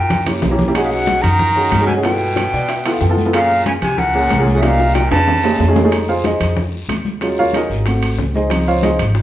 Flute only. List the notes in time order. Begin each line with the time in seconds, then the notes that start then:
Already playing: G5
0.84 F5
0.91 F#5
1.22 A#5
1.88 G#5
2.04 G5
3.34 F5
3.66 G#5
3.82 G#5
3.99 F#5
4.57 E5
4.63 F5
4.94 G5
5.11 A5